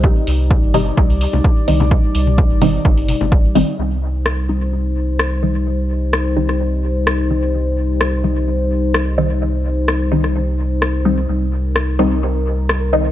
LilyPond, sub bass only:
\new Staff \with { instrumentName = "Sub bass" } { \clef bass \time 4/4 \key c \minor \tempo 4 = 128 r8 c,8 r16 g,,8 r16 c,8 r16 c,16 r8 c,8 | r8 c,8 r16 g,,8 r16 g,,8 r16 g,,8 r16 g,,16 r16 | c,1~ | c,1~ |
c,1~ | c,1 | c,1 | }